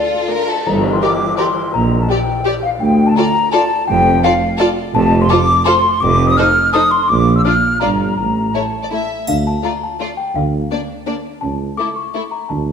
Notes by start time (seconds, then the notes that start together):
Already playing: A3 D4 F4 A4 D5
0.29 A3 D4 A#4
0.48 A4 A5
0.66 G1 G2 A#5, tam-tam
0.93 C6
1.02 G4 A#4 D5 D6
1.38 G4 A#4 D5 C6
1.74 A#1 A#2 A#5
2.03 A5
2.09 G4 D5 G5
2.44 G4 D5
2.63 F5
2.80 D2 G5
3.07 A5
3.16 F4 A4 D5 A#5
3.52 F4 A4 D5 A5
3.88 F1 F2 G5
4.24 F4 A4 D5 F5
4.58 F4 A4 D5
4.95 F1 F2 A5
5.21 C6
5.30 F4 A4 C5 D6
5.65 F4 A4 C5 C6
6.00 F1 F2 D6
6.27 D#6
6.37 D#4 A4 C5 F6
6.73 D#4 A4 C5 D#6
6.91 C6
7.08 A#1 A#2 D6
7.36 E6
7.45 D4 F4 D5 F6
7.80 G1 G2 D4 F4 D5 A#5
8.18 A1 A2 A#5
8.54 A3 E4 C#5 A5
8.83 D5
8.91 A3 E4 E5
9.27 D2 D3 F5, triangle
9.47 A5
9.63 A3 F4 D5 A#5
9.83 A5
10.00 A3 F4 D5
10.17 G5
10.36 D2 D3 F5
10.71 A#3 D4 D5
11.07 A#3 D4 D5
11.41 C#2 C#3 A5
11.77 A3 E4 A4 D6
11.96 C#6
12.14 A3 E4 A4
12.31 A#5
12.49 D2 D3 A5